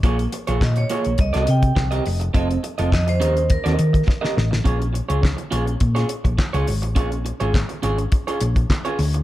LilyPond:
<<
  \new Staff \with { instrumentName = "Vibraphone" } { \time 4/4 \key bes \dorian \tempo 4 = 104 r4 ees''16 des''8. ees''8 g''4 r8 | r4 ees''16 c''8. bes'4 r4 | r1 | r1 | }
  \new Staff \with { instrumentName = "Clean electric guitar" } { \time 4/4 \key bes \dorian <bes f' aes' des''>8 r16 <bes f' aes' des''>16 r8 <bes f' aes' des''>8 r16 <c' g' bes' ees''>8 r8 <c' g' bes' ees''>8 r16 | <c' f' a' ees''>8 r16 <c' f' a' ees''>16 r8 <des' g' bes' ees''>8 r16 <des' g' bes' ees''>8 r8 <des' g' bes' ees''>8 r16 | <des' f' aes' des''>8 r16 <des' f' aes' des''>16 r8 <des' f' aes' des''>8 r16 <des' f' aes' des''>8 r8 <des' f' aes' des''>8 r16 | <des' f' aes' des''>8 r16 <des' f' aes' des''>16 r8 <des' f' aes' des''>8 r16 <des' f' aes' des''>8 r8 <des' f' aes' des''>8 r16 | }
  \new Staff \with { instrumentName = "Fingered electric bass" } { \clef bass \time 4/4 \key bes \dorian bes,,8 r16 bes,,16 bes,8 r16 bes,,16 c,16 c,16 c8 c,8 f,,8 | f,,8 r16 f,,16 f,8 ees,8. ees,16 ees8 r8 a,,8 | bes,,8. des,8 r16 bes,,8 bes,8 r16 bes,,16 r16 des,16 aes,,16 a,,16 | bes,,8. aes,,8 r16 aes,,8 r8 bes,,8 r8 d,8 | }
  \new DrumStaff \with { instrumentName = "Drums" } \drummode { \time 4/4 <hh bd>16 hh16 hh16 hh16 <hc bd sn>16 hh16 hh16 hh16 <hh bd>16 <hh sn>16 hh16 <hh bd>16 <hc bd sn>16 hh16 hho16 hh16 | <hh bd>16 hh16 hh16 hh16 <hc bd sn>16 hh16 hh16 hh16 <hh bd>16 <hh sn>16 hh16 <hh bd>16 <bd sn>16 sn16 sn16 sn16 | <hh bd>16 hh16 hh16 hh16 <hc bd sn>16 hh16 hh16 hh16 <hh bd>16 <hh sn>16 hh16 <hh bd>16 <hc bd sn>16 hh16 hho16 hh16 | <hh bd>16 hh16 hh16 hh16 <hc bd sn>16 hh16 hh16 hh16 <hh bd>16 hh16 hh16 <hh bd>16 <hc bd sn>16 hh16 hho16 hh16 | }
>>